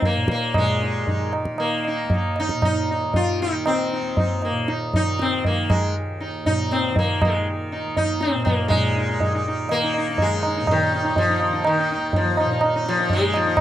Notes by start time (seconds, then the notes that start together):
Already playing: D#2 A#2 D#3
0.02 A#3, tabla tin, tabla ge
0.15 A#2
0.28 A#3, tabla ke
0.54 A#2 G#3 D#4, tabla na, tabla ge
0.83 D#4
1.05 D#3 D#4, tabla tin, tabla ge
1.33 tabla na
1.45 tabla ke
1.55 D#3, tabla na
1.60 A#3
1.85 D#4, tabla na
2.04 D#2
2.10 D#4, tabla tin, tabla ge
2.36 D#4, tabla na
2.49 tabla ke
2.54 A#2
2.62 D#4, tabla na, tabla ge
2.91 D#4
3.04 D#3
3.14 F4, tabla tin, tabla ge
3.42 D#4
3.52 D#3
3.66 C4, tabla na
3.92 D#4
4.01 D#2
4.17 D#4, tabla tin, tabla ge
4.42 A#3, tabla na
4.50 A#2
4.68 D#4, tabla te
4.94 D#4, tabla tin, tabla ge
4.99 D#3
5.19 C4, tabla te
5.45 D#3 A#3, tabla tin, tabla ge
5.70 G#3, tabla na, tabla ge
5.94 D#2
6.20 D#4
6.44 A#2 D#4, tabla tin, tabla ge
6.71 C4, tabla te
6.90 D#3
6.96 A#3, tabla tin, tabla ge
7.22 G#3, tabla na, tabla ge
7.39 D#3
7.72 D#4
7.86 D#2
7.97 D#4, tabla tin, tabla ge
8.21 C4, tabla te
8.33 A#2
8.45 A#3, tabla tin, tabla ge
8.68 G#3 D#4, tabla na, tabla ge
8.73 A#2
8.83 D#4
8.97 D#4
9.09 D#4
9.19 D#3 D#4, tabla tin, tabla ge
9.34 D#4
9.48 D#4
9.68 D#3 A#3, tabla na
9.83 D#4
9.94 D#4, tabla na
10.10 D#4
10.14 D#2
10.18 G#3, tabla tin, tabla ge
10.35 D#4
10.43 tabla na
10.47 D#4
10.57 A#2 D#4
10.67 D#3, tabla na, tabla ge
10.82 D#4
10.94 D#4
11.04 D#3 D#4
11.16 F3, tabla tin, tabla ge
11.29 D#4
11.40 D#4, tabla na
11.50 D#3 D#4
11.65 D#3, tabla na
11.79 D#4
11.92 D#4
11.96 D#2
12.13 F3, tabla tin, tabla ge
12.37 D#4, tabla na
12.43 A#2
12.51 D#4
12.61 D#4, tabla na
12.76 D#4
12.86 D#3 F3, tabla te
12.99 D#4
13.10 G#3, tabla tin, tabla ge
13.23 D#4
13.34 D#3 F3, tabla na
13.47 D#4
13.57 tabla na, tabla ge